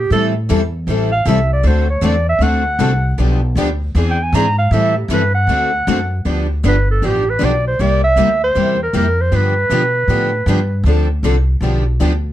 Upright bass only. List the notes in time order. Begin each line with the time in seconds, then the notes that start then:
0.10 A2
0.50 E2
0.87 A1
1.25 C2
1.64 D2
2.02 E2
2.39 D2
2.79 C2
3.18 B1
3.55 D2
3.95 E2
4.33 G#2
4.71 A2
5.08 G2
5.47 D2
5.87 F#2
6.25 D2
6.64 G1
7.02 A1
7.42 B1
7.79 C2
8.16 D2
8.55 E2
8.93 F2
9.32 G2
9.70 B2
10.08 A2
10.46 G2
10.84 D2
11.23 C2
11.61 B1
12.00 D2